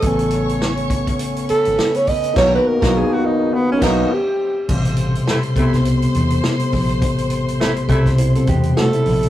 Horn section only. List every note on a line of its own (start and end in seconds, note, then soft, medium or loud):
5.27 5.38 C3 medium
5.27 5.38 A3 medium
5.27 5.38 E4 loud
5.57 5.75 C3 medium
5.57 5.75 A3 medium
5.57 5.75 E4 loud
7.60 7.71 C3 medium
7.60 7.71 A3 medium
7.60 7.71 E4 loud
7.89 8.08 C3 medium
7.89 8.08 A3 medium
7.89 8.08 E4 medium